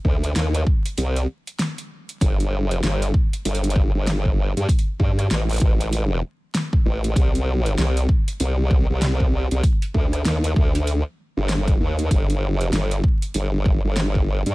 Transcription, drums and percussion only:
0.05 kick medium
0.24 closed hi-hat soft
0.36 cross-stick soft
0.36 snare loud
0.36 closed hi-hat medium
0.55 closed hi-hat medium
0.67 kick loud
0.86 closed hi-hat medium
0.98 closed hi-hat medium
1.16 closed hi-hat soft
1.47 closed hi-hat soft
1.59 snare loud
1.59 closed hi-hat medium
1.78 closed hi-hat soft
2.09 closed hi-hat soft
2.21 kick loud
2.21 closed hi-hat medium
2.40 closed hi-hat soft
2.71 closed hi-hat soft
2.83 snare loud
2.83 closed hi-hat medium
3.02 closed hi-hat medium
3.14 kick loud
3.33 closed hi-hat medium
3.45 closed hi-hat medium
3.55 closed hi-hat medium
3.64 closed hi-hat medium
3.70 closed hi-hat soft
3.76 kick loud
4.07 snare loud
4.07 closed hi-hat medium
4.25 kick medium
4.57 closed hi-hat soft
4.69 kick loud
4.69 closed hi-hat medium
4.79 closed hi-hat soft
5.00 kick medium
5.19 cross-stick soft
5.19 closed hi-hat soft
5.31 snare loud
5.31 closed hi-hat medium
5.49 closed hi-hat soft
5.51 closed hi-hat soft
5.53 closed hi-hat soft
5.54 closed hi-hat soft
5.56 closed hi-hat soft
5.58 closed hi-hat soft
5.60 kick loud
5.60 closed hi-hat soft
5.81 closed hi-hat medium
5.93 closed hi-hat medium
6.55 snare loud
6.55 closed hi-hat medium
6.73 kick loud
7.04 closed hi-hat soft
7.16 kick loud
7.16 closed hi-hat medium
7.35 closed hi-hat soft
7.66 closed hi-hat soft
7.78 snare loud
7.78 closed hi-hat medium
7.97 closed hi-hat medium
8.09 kick loud
8.28 closed hi-hat medium
8.40 closed hi-hat medium
8.71 kick loud
9.02 snare loud
9.02 closed hi-hat medium
9.20 kick medium
9.51 closed hi-hat soft
9.63 kick loud
9.63 closed hi-hat medium
9.82 closed hi-hat soft
9.94 kick medium
10.13 cross-stick soft
10.13 closed hi-hat soft
10.25 snare loud
10.25 closed hi-hat medium
10.44 closed hi-hat medium
10.56 kick loud
10.75 closed hi-hat medium
10.87 closed hi-hat medium
11.49 snare loud
11.49 closed hi-hat medium
11.68 kick loud
11.68 closed hi-hat soft
11.99 closed hi-hat soft
12.11 kick loud
12.11 closed hi-hat medium
12.30 closed hi-hat soft
12.61 closed hi-hat soft
12.73 snare loud
12.73 closed hi-hat medium
12.91 closed hi-hat medium
13.04 kick loud
13.22 closed hi-hat soft
13.34 closed hi-hat medium
13.66 kick loud
13.96 snare loud
13.96 closed hi-hat medium
14.15 kick medium
14.46 closed hi-hat soft

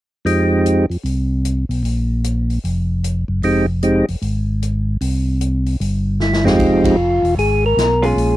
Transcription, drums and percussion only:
0.26 open hi-hat soft
0.66 closed hi-hat soft
0.91 open hi-hat soft
1.05 open hi-hat soft
1.45 closed hi-hat soft
1.71 open hi-hat soft
1.85 open hi-hat soft
2.24 closed hi-hat soft
2.50 open hi-hat soft
2.65 open hi-hat soft
3.04 closed hi-hat soft
3.43 open hi-hat soft
3.83 closed hi-hat soft
4.08 open hi-hat soft
4.22 open hi-hat soft
4.62 closed hi-hat soft
5.01 open hi-hat soft
5.41 closed hi-hat soft
5.66 open hi-hat soft
5.81 open hi-hat soft
6.20 snare soft
6.33 snare soft
6.47 snare medium
6.59 kick medium
6.59 ride medium
6.84 kick medium
6.84 ride medium
7.25 open hi-hat soft
7.39 open hi-hat soft
7.78 snare medium
7.78 closed hi-hat soft
8.03 open hi-hat soft
8.18 open hi-hat soft

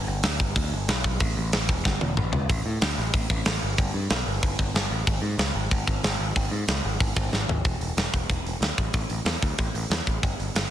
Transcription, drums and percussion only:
0.23 snare loud
0.23 open hi-hat medium
0.40 kick medium
0.56 kick loud
0.56 open hi-hat medium
0.88 snare loud
0.88 open hi-hat medium
1.04 kick medium
1.20 kick loud
1.20 open hi-hat medium
1.53 snare loud
1.53 open hi-hat medium
1.69 kick medium
1.85 kick loud
1.85 snare medium
2.01 high tom medium
2.17 mid tom medium
2.33 floor tom loud
2.49 kick medium
2.49 open hi-hat medium
2.81 snare loud
2.81 open hi-hat medium
3.14 kick loud
3.14 open hi-hat medium
3.30 kick loud
3.45 snare loud
3.45 open hi-hat medium
3.78 kick loud
3.78 open hi-hat medium
4.10 snare loud
4.10 open hi-hat medium
4.43 kick loud
4.43 open hi-hat medium
4.59 kick medium
4.75 snare loud
4.75 open hi-hat medium
5.07 kick loud
5.07 open hi-hat medium
5.39 snare loud
5.39 open hi-hat medium
5.71 kick loud
5.71 open hi-hat medium
5.87 kick loud
6.04 snare loud
6.04 open hi-hat medium
6.36 kick loud
6.36 open hi-hat medium
6.68 snare loud
6.68 open hi-hat medium
7.00 kick loud
7.00 open hi-hat medium
7.17 kick loud
7.33 snare medium
7.49 floor tom medium
7.65 kick loud
7.65 open hi-hat medium
7.81 open hi-hat medium
7.97 snare loud
7.97 open hi-hat medium
8.14 kick medium
8.14 open hi-hat medium
8.30 kick loud
8.30 open hi-hat medium
8.46 open hi-hat medium
8.62 snare loud
8.62 open hi-hat medium
8.78 kick medium
8.78 open hi-hat medium
8.93 kick loud
8.93 open hi-hat medium
9.10 open hi-hat medium
9.26 snare loud
9.26 open hi-hat medium
9.42 kick medium
9.42 open hi-hat medium
9.58 kick loud
9.58 open hi-hat medium
9.75 open hi-hat medium
9.91 snare loud
9.91 open hi-hat medium
10.07 kick medium
10.07 open hi-hat medium
10.23 kick loud
10.23 open hi-hat medium
10.40 open hi-hat medium
10.56 snare loud
10.56 open hi-hat medium

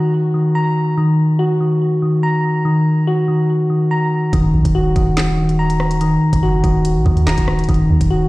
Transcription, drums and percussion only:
4.33 kick loud
4.33 closed hi-hat medium
4.65 kick medium
4.65 closed hi-hat medium
4.96 kick loud
4.96 closed hi-hat medium
5.17 snare loud
5.17 clap loud
5.49 closed hi-hat medium
5.70 closed hi-hat medium
5.80 cross-stick loud
5.91 closed hi-hat medium
6.01 closed hi-hat medium
6.33 kick medium
6.33 closed hi-hat medium
6.64 kick loud
6.64 closed hi-hat medium
6.85 closed hi-hat medium
7.06 kick medium
7.17 closed hi-hat medium
7.27 snare loud
7.27 clap medium
7.38 kick medium
7.38 closed hi-hat medium
7.48 cross-stick loud
7.59 closed hi-hat soft
7.64 closed hi-hat soft
7.69 kick loud
7.69 closed hi-hat soft
7.74 closed hi-hat soft
8.01 kick medium
8.01 closed hi-hat medium

